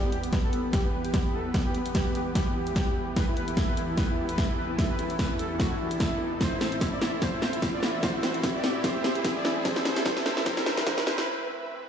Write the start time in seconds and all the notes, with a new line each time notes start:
Already playing: E2 E3 B3 G4 B4, riser
0.03 B3
0.12 G4, closed hi-hat
0.23 B3, closed hi-hat
0.33 B3, kick, snare, closed hi-hat
0.44 A4
0.53 B3, closed hi-hat
0.64 B3
0.73 G4, kick, snare, closed hi-hat
0.84 B3
0.93 B3
1.04 G4, closed hi-hat
1.14 B3, kick, snare, closed hi-hat
1.25 B3
1.34 A4
1.45 B3
1.54 B3, kick, snare, closed hi-hat
1.65 G4
1.75 B3, closed hi-hat
1.86 B3, closed hi-hat
1.95 G4, kick, snare, closed hi-hat
2.06 B3
2.15 G4, closed hi-hat
2.26 B3
2.35 G4, kick, snare, closed hi-hat
2.46 B3
2.56 G4
2.67 closed hi-hat
2.76 kick, snare, closed hi-hat
3.16 A4 B4, kick, snare, closed hi-hat
3.28 E4
3.37 B4, closed hi-hat
3.48 E4, closed hi-hat
3.57 E4, kick, snare, closed hi-hat
3.68 B4
3.77 E4, closed hi-hat
3.88 E4
3.97 B4, kick, snare, closed hi-hat
4.09 E4
4.18 E4
4.29 B4, closed hi-hat
4.38 E4, kick, snare, closed hi-hat
4.49 E4
4.58 B4
4.69 E4
4.79 E4, kick, snare, closed hi-hat
4.90 B4
4.99 E4, closed hi-hat
5.10 E4, closed hi-hat
5.19 B4, kick, snare, closed hi-hat
5.30 E4
5.39 A4, closed hi-hat
5.50 E4
5.60 F#4, kick, snare, closed hi-hat
5.71 E4
5.80 E4
5.91 closed hi-hat
6.00 kick, snare, closed hi-hat
6.41 A2 E3 C4 C5 E5, kick, snare, closed hi-hat
6.52 E4
6.61 C5, snare, closed hi-hat
6.72 E4, closed hi-hat
6.81 E4, kick, snare, closed hi-hat
6.92 D5
7.02 E4, snare, closed hi-hat
7.13 E4
7.22 C5, kick, snare, closed hi-hat
7.33 E4
7.42 C5, snare
7.53 E4, closed hi-hat
7.62 E4, kick, snare, closed hi-hat
7.73 D5
7.83 E4, snare
7.94 E4
8.03 C5, kick, snare, closed hi-hat
8.14 E4
8.23 C5, snare, closed hi-hat
8.34 E4, closed hi-hat
8.43 E4, kick, snare, closed hi-hat
8.54 D5
8.64 E4, snare, closed hi-hat
8.75 E4
8.84 C5, kick, snare, closed hi-hat
8.95 E4
9.04 C5, snare
9.15 E4, closed hi-hat
9.24 E4, kick, snare, closed hi-hat
9.36 D5
9.45 E4, snare
9.56 E4
9.65 B4 C5, kick, snare, closed hi-hat
9.76 E4, snare
9.85 C5, snare, closed hi-hat
9.96 E4, snare, closed hi-hat
10.05 C5, kick, snare, closed hi-hat
10.17 E4, snare
10.26 C5, snare, closed hi-hat
10.37 E4, snare
10.46 C5, kick, snare, closed hi-hat
10.57 E4, snare
10.66 C5, snare
10.77 E4, snare, closed hi-hat
10.87 C5, kick, snare, closed hi-hat
10.98 E4, snare
11.07 C5, snare
11.18 E4, snare